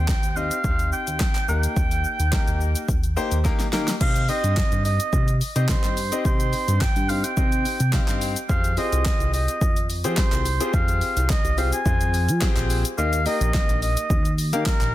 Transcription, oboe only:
0.00 0.30 G5 loud
0.30 0.38 G5 medium
0.36 0.92 F5 loud
0.92 1.45 G5 loud
1.49 3.13 G5 loud
4.01 4.30 F5 loud
4.29 4.84 D#5 loud
4.85 5.37 D#5 loud
5.69 6.21 C5 medium
6.25 6.83 C5 loud
6.81 7.11 G5 loud
7.09 7.26 F5 loud
7.24 8.08 G5 loud
8.50 8.79 F5 loud
8.78 9.33 D#5 loud
9.34 9.86 D#5 loud
10.18 10.70 C5 medium
10.74 11.31 F5 loud
11.30 11.59 D#5 medium
11.58 11.72 F5 loud
11.73 12.53 G#5 loud
12.98 13.28 F5 loud
13.26 13.82 D#5 loud
13.82 14.34 D#5 loud
14.66 14.95 A#4 medium

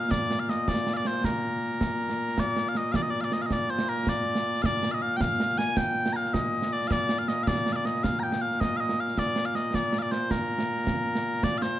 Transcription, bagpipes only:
0.00 11.80 A#2 medium
0.00 11.80 A#3 medium
0.00 0.11 F5 loud
0.11 0.40 D5 loud
0.40 0.50 F5 medium
0.50 0.68 D#5 medium
0.68 0.94 D5 medium
0.94 1.07 D5 medium
0.94 0.97 F5 medium
1.07 1.25 C5 medium
1.25 2.40 A#4 medium
2.40 2.68 D5 loud
2.68 2.77 F5 medium
2.77 2.92 D#5 loud
2.92 3.02 D5 loud
2.92 2.96 F5 loud
3.02 3.10 D#5 medium
3.10 3.21 D5 medium
3.21 3.33 D5 medium
3.21 3.24 F5 medium
3.33 3.42 D#5 medium
3.42 3.46 F5 medium
3.46 3.52 D#5 medium
3.52 3.70 D5 medium
3.70 3.89 C5 medium
3.89 4.09 A#4 loud
4.09 4.62 D5 medium
4.62 4.91 D5 loud
4.62 4.66 F5 loud
4.91 5.02 D#5 medium
4.91 4.94 F5 medium
5.02 5.17 F5 loud
5.17 5.21 G5 loud
5.21 5.58 F5 loud
5.58 5.77 G#5 loud
5.77 6.13 G5 loud
6.13 6.27 F5 loud
6.13 6.16 A#5 loud
6.27 6.34 F5 medium
6.34 6.73 D#5 loud
6.73 6.88 D5 medium
6.88 6.92 F5 loud
6.92 7.19 D5 loud
7.19 7.28 F5 medium
7.28 7.43 D#5 loud
7.43 7.48 F5 medium
7.48 7.73 D5 medium
7.73 7.85 D5 medium
7.73 7.76 F5 medium
7.85 8.03 D#5 medium
8.03 8.20 F5 loud
8.20 8.42 G5 loud
8.20 8.23 A#5 loud
8.41 8.61 F5 medium
8.61 8.77 D#5 loud
8.77 9.00 D#5 loud
8.77 8.80 F5 loud
9.00 9.19 F5 loud
9.19 9.45 D5 loud
9.45 9.55 F5 medium
9.55 9.75 D#5 medium
9.75 9.99 D5 medium
9.99 10.11 D5 medium
9.99 10.02 F5 medium
10.11 10.31 C5 medium
10.31 11.44 A#4 medium
11.44 11.58 D5 loud
11.58 11.62 F5 medium
11.62 11.80 C5 medium

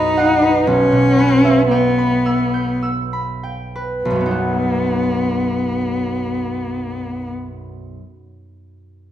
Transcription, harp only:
0.00 0.66 B1 soft
0.00 0.70 F#2 soft
0.00 0.41 B4 soft
0.00 0.70 D#5 soft
0.00 0.16 F#5 soft
0.00 1.97 B5 soft
0.00 0.71 D#6 soft
0.00 0.71 F#6 soft
0.17 0.71 F#5 soft
0.42 1.17 B4 soft
0.67 4.04 B1 soft
0.92 4.11 B2 soft
1.18 3.74 B4 soft
1.45 4.11 E5 soft
1.71 3.42 G5 soft
1.98 3.12 B5 soft
2.26 2.81 E6 soft
2.54 4.11 G6 soft
2.83 4.11 E6 soft
3.13 7.03 B5 soft
3.43 4.10 G5 soft
3.75 7.58 B4 soft
4.05 7.95 B1 soft
4.10 8.00 F#2 soft
4.16 7.85 F#3 soft
4.21 7.45 B3 soft
4.26 7.51 D#4 soft
4.31 7.56 F#4 soft

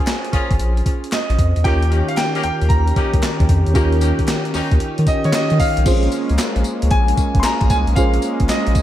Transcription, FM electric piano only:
0.00 1.61 C#4 medium
0.00 1.61 F4 medium
0.00 1.61 G#4 medium
0.00 1.62 C5 medium
1.64 3.71 C#4 medium
1.64 3.72 F4 medium
1.64 3.72 G4 medium
1.64 3.72 A#4 medium
3.74 5.81 C#4 medium
3.74 5.82 F4 medium
3.74 5.82 G4 medium
3.74 5.83 A#4 medium
5.85 5.94 C4 medium
5.85 7.92 F4 medium
5.85 7.93 G#4 medium
5.85 7.93 C5 medium
5.91 7.95 C#4 medium
7.96 8.82 C#4 medium
7.96 8.82 F4 medium
7.96 8.82 G#4 medium
7.96 8.82 C5 medium

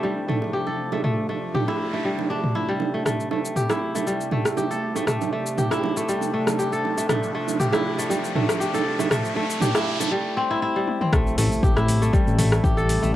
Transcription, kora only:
0.00 2.04 G3 medium
0.00 0.28 A3 medium
0.00 1.23 E4 medium
0.00 0.53 G4 medium
0.28 0.92 A3 medium
0.53 1.54 G4 medium
0.67 1.98 A4 medium
0.92 1.03 A3 medium
1.04 1.29 A3 medium
1.29 1.93 A3 medium
1.54 2.96 G4 medium
1.68 2.55 E4 medium
1.93 2.93 A3 medium
2.05 2.67 G3 medium
2.30 3.98 D4 medium
2.55 3.69 E4 medium
2.69 3.11 G3 medium
2.94 3.05 A3 medium
3.05 3.31 A3 medium
3.31 3.94 A3 medium
3.56 4.57 G4 medium
3.70 5.26 E4 loud
3.95 4.32 A3 medium
4.07 6.07 G3 medium
4.32 4.95 A3 medium
4.57 5.58 G4 medium
4.71 6.02 A4 medium
4.96 5.07 A3 medium
5.07 5.32 A3 medium
5.33 5.96 A3 medium
5.58 6.59 G4 medium
5.72 7.28 E4 loud
5.97 6.33 A3 medium
6.09 7.14 G3 medium
6.33 6.97 A3 medium
6.59 7.59 G4 medium
6.72 8.04 A4 medium
6.98 7.09 A3 medium
7.09 7.34 A3 medium
7.35 7.98 A3 medium
7.60 8.60 G4 medium
7.73 9.30 E4 loud
7.98 8.35 A3 medium
8.10 10.10 G3 medium
8.35 8.99 A3 medium
8.60 9.61 G4 medium
8.74 10.06 A4 medium
9.00 9.11 A3 medium
9.11 9.36 A3 medium
9.36 10.00 A3 medium
9.61 11.03 G4 medium
9.75 10.50 E4 loud
10.00 11.13 A3 medium
10.12 10.75 G3 medium
10.37 11.01 C4 loud
10.51 10.62 E4 loud
10.62 11.76 E4 loud
10.76 11.18 G3 medium
11.01 12.81 C4 medium
11.13 11.38 A3 medium
11.38 12.01 A3 medium
11.63 12.63 G4 medium
11.76 13.15 E4 loud
12.02 12.38 A3 medium
12.13 13.15 G3 medium
12.38 13.02 A3 medium
12.64 13.15 G4 medium
12.77 13.15 A4 medium
13.02 13.14 A3 medium

